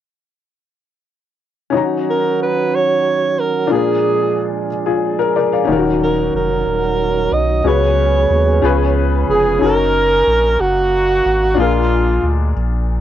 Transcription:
1.70 tonewheel organ D#3 F#3 C#4 F#4, upright piano C#4 D#4
1.75 upright piano F#4 A#5
2.10 alto saxophone A#4
2.43 alto saxophone B4
2.75 alto saxophone C#5
3.40 alto saxophone A#4
3.67 upright piano A#2 D4 F4, tonewheel organ F3 G#3 D4 G#4
3.72 alto saxophone G#4, upright piano G#4 A#4
4.86 upright piano F4 G#4
5.19 upright piano A#4
5.36 upright piano A#4 D5
5.53 upright piano D5 F5
5.65 sub bass D#1, tonewheel organ D#3 F#3 C#4 F#4, upright piano D#3 C#4 D#4
5.69 upright piano F4 A#4
5.76 upright piano F#4
6.03 alto saxophone A#4
6.34 sub bass F1, alto saxophone A#4
6.66 sub bass D#1
7.32 sub bass B1, alto saxophone D#5
7.64 sub bass C#2, upright piano C#3 C#4 F#4 G#4 B4, tonewheel organ G#3 B3 G#4, alto saxophone C#5
8.30 sub bass D#2
8.62 sub bass C#2, upright piano C#3 C#4 F4 G#4 B4, tonewheel organ F3
9.28 sub bass F1, alto saxophone G#4, horn section G#4
9.59 sub bass F#1, upright piano C#4 D#4, alto saxophone A#4
9.63 horn section C#4 D#4 A#4, upright piano F#4 A#4
10.27 sub bass A#1
10.60 sub bass F#1, horn section A#3 D#4 F#4, alto saxophone F#4
11.25 sub bass G#1
11.54 sub bass A#1, upright piano A#2 D4 F4
11.59 horn section G#3 D4 F4, alto saxophone F4, upright piano G#4 A#4
12.23 sub bass D2
12.56 sub bass A#1

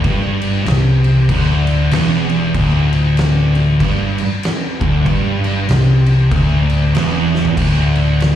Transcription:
0.04 picked electric bass G1, distorted electric guitar G2, kick, crash
0.41 crash
0.66 picked electric bass C2, distorted electric guitar C3, snare, crash
1.04 crash
1.28 picked electric bass D1, distorted electric guitar D2, kick, crash
1.67 crash
1.91 picked electric bass E1, distorted electric guitar E2, snare, crash
2.29 crash
2.54 picked electric bass D1, distorted electric guitar D2, kick, crash
2.93 crash
3.17 snare, crash
3.55 crash
3.80 picked electric bass G1, distorted electric guitar G2, kick, crash
4.18 crash
4.43 snare, crash
4.80 picked electric bass D1, distorted electric guitar D2, kick, crash
5.06 picked electric bass G1, distorted electric guitar G2, kick, crash
5.44 crash
5.69 picked electric bass C2, distorted electric guitar C3, snare, crash
6.06 crash
6.31 picked electric bass D1, distorted electric guitar D2, kick, crash
6.69 crash
6.94 picked electric bass E1, distorted electric guitar E2, snare, crash
7.35 snare
7.45 floor tom
7.57 picked electric bass D1, distorted electric guitar D2, kick, crash
7.95 crash
8.20 snare, crash

